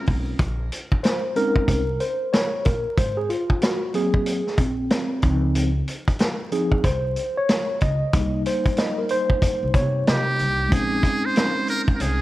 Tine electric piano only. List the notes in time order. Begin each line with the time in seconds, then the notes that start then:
Already playing: G#3 C4 C#4 F4
1.03 C5
1.36 G#3 C4 C#4 D#4 A#4
2.00 C5
2.33 C#5
2.65 A#4
2.97 C5
3.17 G#4
3.30 F4
3.62 F#4
3.94 F#3 A#3 C4 G#4
4.60 C4
5.23 F3 C4 D#4
6.52 F3 C4 D#4 G#4
6.84 C5
7.37 C#5
7.82 D#5
8.14 G3 A#3 D#4
8.47 C5
8.79 D#5
8.98 A#4
9.11 C5
9.75 C#5
10.68 G#3 C4 C#4
10.74 D#4